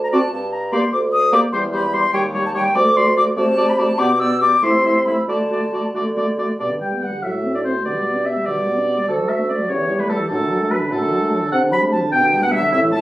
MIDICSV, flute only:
0, 0, Header, 1, 2, 480
1, 0, Start_track
1, 0, Key_signature, 1, "major"
1, 0, Tempo, 405405
1, 387, Time_signature, 6, 3, 24, 8
1, 4717, Tempo, 434783
1, 7597, Tempo, 418702
1, 9037, Tempo, 406229
1, 15136, End_track
2, 0, Start_track
2, 0, Title_t, "Flute"
2, 0, Program_c, 0, 73
2, 35, Note_on_c, 0, 82, 113
2, 88, Note_off_c, 0, 82, 0
2, 153, Note_on_c, 0, 81, 117
2, 375, Note_off_c, 0, 81, 0
2, 382, Note_on_c, 0, 81, 111
2, 618, Note_on_c, 0, 82, 100
2, 636, Note_off_c, 0, 81, 0
2, 851, Note_on_c, 0, 84, 112
2, 869, Note_off_c, 0, 82, 0
2, 1084, Note_off_c, 0, 84, 0
2, 1091, Note_on_c, 0, 86, 109
2, 1162, Note_off_c, 0, 86, 0
2, 1327, Note_on_c, 0, 87, 120
2, 1562, Note_off_c, 0, 87, 0
2, 1575, Note_on_c, 0, 86, 127
2, 1646, Note_off_c, 0, 86, 0
2, 1798, Note_on_c, 0, 84, 109
2, 1869, Note_off_c, 0, 84, 0
2, 2056, Note_on_c, 0, 83, 121
2, 2287, Note_on_c, 0, 84, 127
2, 2305, Note_off_c, 0, 83, 0
2, 2518, Note_off_c, 0, 84, 0
2, 2526, Note_on_c, 0, 79, 115
2, 2608, Note_off_c, 0, 79, 0
2, 2910, Note_on_c, 0, 81, 124
2, 2961, Note_off_c, 0, 81, 0
2, 3027, Note_on_c, 0, 79, 127
2, 3254, Note_on_c, 0, 86, 127
2, 3272, Note_off_c, 0, 79, 0
2, 3508, Note_on_c, 0, 84, 123
2, 3525, Note_off_c, 0, 86, 0
2, 3740, Note_off_c, 0, 84, 0
2, 3747, Note_on_c, 0, 86, 123
2, 3818, Note_off_c, 0, 86, 0
2, 3993, Note_on_c, 0, 81, 125
2, 4368, Note_on_c, 0, 83, 119
2, 4386, Note_off_c, 0, 81, 0
2, 4478, Note_on_c, 0, 81, 127
2, 4496, Note_off_c, 0, 83, 0
2, 4713, Note_on_c, 0, 86, 118
2, 4730, Note_off_c, 0, 81, 0
2, 4948, Note_on_c, 0, 88, 123
2, 4965, Note_off_c, 0, 86, 0
2, 5179, Note_off_c, 0, 88, 0
2, 5186, Note_on_c, 0, 86, 120
2, 5427, Note_on_c, 0, 84, 111
2, 5444, Note_off_c, 0, 86, 0
2, 5895, Note_on_c, 0, 83, 115
2, 5911, Note_off_c, 0, 84, 0
2, 6140, Note_off_c, 0, 83, 0
2, 6145, Note_on_c, 0, 81, 94
2, 6860, Note_off_c, 0, 81, 0
2, 7599, Note_on_c, 0, 74, 62
2, 7668, Note_off_c, 0, 74, 0
2, 7852, Note_on_c, 0, 79, 64
2, 7921, Note_off_c, 0, 79, 0
2, 8085, Note_on_c, 0, 78, 60
2, 8318, Note_off_c, 0, 78, 0
2, 8328, Note_on_c, 0, 76, 65
2, 8408, Note_off_c, 0, 76, 0
2, 8693, Note_on_c, 0, 74, 62
2, 8743, Note_off_c, 0, 74, 0
2, 8805, Note_on_c, 0, 72, 62
2, 8873, Note_off_c, 0, 72, 0
2, 9036, Note_on_c, 0, 74, 66
2, 9518, Note_on_c, 0, 76, 65
2, 9535, Note_off_c, 0, 74, 0
2, 9759, Note_on_c, 0, 74, 68
2, 9776, Note_off_c, 0, 76, 0
2, 10489, Note_off_c, 0, 74, 0
2, 10496, Note_on_c, 0, 69, 74
2, 10567, Note_off_c, 0, 69, 0
2, 10740, Note_on_c, 0, 76, 70
2, 10811, Note_off_c, 0, 76, 0
2, 10973, Note_on_c, 0, 74, 62
2, 11044, Note_off_c, 0, 74, 0
2, 11213, Note_on_c, 0, 73, 76
2, 11569, Note_off_c, 0, 73, 0
2, 11592, Note_on_c, 0, 71, 76
2, 11691, Note_on_c, 0, 69, 86
2, 11709, Note_off_c, 0, 71, 0
2, 11929, Note_off_c, 0, 69, 0
2, 11937, Note_on_c, 0, 69, 77
2, 12410, Note_off_c, 0, 69, 0
2, 12424, Note_on_c, 0, 71, 93
2, 12494, Note_off_c, 0, 71, 0
2, 12671, Note_on_c, 0, 69, 82
2, 13367, Note_off_c, 0, 69, 0
2, 13374, Note_on_c, 0, 78, 104
2, 13445, Note_off_c, 0, 78, 0
2, 13605, Note_on_c, 0, 83, 107
2, 13676, Note_off_c, 0, 83, 0
2, 13844, Note_on_c, 0, 81, 98
2, 13914, Note_off_c, 0, 81, 0
2, 14086, Note_on_c, 0, 79, 110
2, 14450, Note_on_c, 0, 78, 121
2, 14467, Note_off_c, 0, 79, 0
2, 14567, Note_off_c, 0, 78, 0
2, 14572, Note_on_c, 0, 76, 122
2, 14800, Note_off_c, 0, 76, 0
2, 14806, Note_on_c, 0, 76, 117
2, 14877, Note_off_c, 0, 76, 0
2, 15033, Note_on_c, 0, 81, 127
2, 15136, Note_off_c, 0, 81, 0
2, 15136, End_track
0, 0, End_of_file